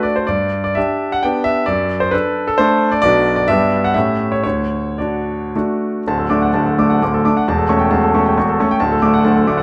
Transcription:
Already playing: A3 D4 F#4
0.03 D5
0.16 C5
0.27 G2 D5
0.64 D5
0.75 D4 G4 E5
1.12 F#5
1.23 B3 D4 G4 G5
1.44 E5
1.66 F#2 D5
2.00 C5
2.11 D4 A4 B4
2.47 A4
2.58 A3 D4 A4 C5
2.92 D5
3.02 B1 B3 D4 F#4 D5
3.36 D5
3.48 G2 B3 D4 G4 E5
3.84 F#5
3.94 A2 A3 C#4 G4 E5
4.32 C#5
4.44 D2 C#5
4.98 D4 F#4 D5
5.56 A3 D4 F#4
6.08 D1 D2 A5
6.19 A4
6.30 A3 D4 D6
6.42 F#5
6.54 D1 D2 A5
6.66 A4
6.78 A3 D4 D6
6.90 F#5
7.02 D1 D2 D6
7.14 A4
7.25 A3 D4 D6
7.37 F#5
7.48 E1 E2 A5
7.58 A4
7.69 A3 C#4 C#6
7.79 G5
7.91 E1 E2 A5
8.03 A4
8.15 A3 C#4 C#6
8.26 G5
8.38 E1 E2 C#6
8.49 A4
8.60 A3 C#4 C#6
8.71 G5
8.80 D1 D2 A5
8.92 A4
9.02 A3 D4 D6
9.14 F#5
9.24 D1 D2 A5
9.36 A4
9.47 A3 D4 D6
9.58 F#5

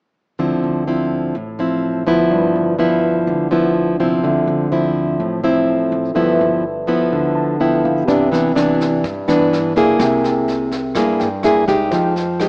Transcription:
0.39 D2 D3 F3 C4 E4
0.64 D2
0.87 F3 C4 E4
1.35 A1 A2
1.59 F3 C4 E4
2.07 D2 F3 B3 E4
2.31 G1 G2
2.56 G1
2.79 F3 B3 E4
3.27 D2 D3
3.51 F3 B3 E4
4.00 C2 F3 C4 E4
4.23 D2 D3 A4 C5 E5
4.47 D2
4.72 F3 C4 E4
5.20 A1 A2
5.43 F3 C4 E4
5.92 A1
6.15 G1 G2 F3 B3 E4 A4 B4
6.19 E5
6.41 G1
6.87 F3 B3 E4
7.12 D2 D3
7.35 A5
7.60 F3 B3 E4 G5
7.85 G1 F5
8.05 C2 C3 E3 B3 D4 G4 B4, kick, snare
8.10 D5 E5
8.32 E3 B3 D4, snare
8.56 E3 B3 D4, cross-stick, snare
8.80 kick, snare
9.04 G2, kick, snare
9.28 G2 E3 B3 D4, cross-stick, snare
9.53 snare
9.76 C2 A#3 E4 G#4, kick, snare
9.96 C2 G#4 A#4 E5, kick, cross-stick, snare
10.01 C3 G5
10.24 snare
10.48 snare
10.71 kick, snare
10.95 G2 A#3 E4 G#4, kick, cross-stick, snare
11.20 G2 G5, snare
11.43 A#3 E4 G#4 E5, cross-stick, snare
11.68 C2 G#3 D#4 G4, kick, snare
11.91 F2 F3 C5 D#5 G5, kick, snare
12.16 snare
12.40 G#3 D#4 G4, cross-stick, snare

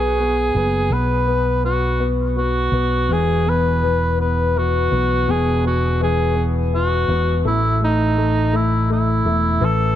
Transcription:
Already playing: B1 B3 G#4
0.20 B3
0.55 F#1 B3
0.90 B1 B3 B4
1.28 B3
1.65 B3 F#4
2.00 B3
2.37 B3 F#4
2.72 B1 B3
3.09 E1 E3 G#4
3.47 B3 B4
3.83 E3
4.18 B3 B4
4.56 E3 F#4
4.92 B1 B3
5.28 E1 B2 G#4
5.64 B3 F#4
6.01 E3 G#4
6.35 B3
6.74 E3 F#4
7.08 E1 B3
7.45 A1 A3 E4
7.81 A3 D#4
8.18 A3
8.53 A3 E4
8.90 A3 E4
9.25 E1 A3
9.60 A1 E3
9.65 A4

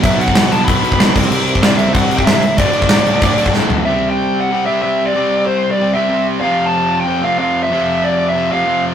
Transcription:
0.01 B1 B2 F#3 E5, kick, crash
0.05 B3
0.17 B1 F#5, crash
0.28 kick
0.34 B1, snare, crash
0.49 B1 B2 F#3 B3 A5, crash
0.65 B1 B5, kick
0.69 crash
0.82 B1, crash
0.92 kick
0.98 B1, snare, crash
1.13 C2 C3 G3 C4, kick, crash
1.30 C2, crash
1.48 crash
1.55 kick
1.60 C2 C3 G3, snare, crash
1.65 C4 D5
1.77 C2 E5, crash
1.93 C2 F#5, kick, crash
2.10 C2, crash
2.18 G5, kick
2.25 C2 E5, snare, crash
2.33 E5
2.40 C#2, crash
2.56 D1 D2 A2 D3 D5, kick, crash
2.73 D1, crash
2.82 kick
2.89 D1, snare, crash
3.04 D1 D2 A2 D3, crash
3.22 D1, kick, crash
3.38 D1, crash
3.46 kick
3.54 D1, snare
3.69 D1, floor tom
3.85 C3 G3 C4 E5
4.10 G5
4.41 F#5
4.51 C3 G3 C4
4.66 C3 G3 C4 E5
4.82 C3 G3 C4 E5
5.06 D5
5.14 C3 G3 C4
5.46 C5
5.71 D5
5.78 C3 G3 C4
5.93 G3 C4 E5
5.98 C3
6.09 C3 G3
6.14 C4
6.41 F2 C3 F3 F5
6.66 A5
7.00 G5
7.06 F2 C3 F3
7.22 F2 C3 F3 F5
7.38 F2 C3 F3 F5
7.63 E5
7.71 F2 C3 F3
8.04 D5
8.29 E5
8.34 F2 C3 F3
8.51 F2 C3 F3 F5
8.65 F2 C3 F3

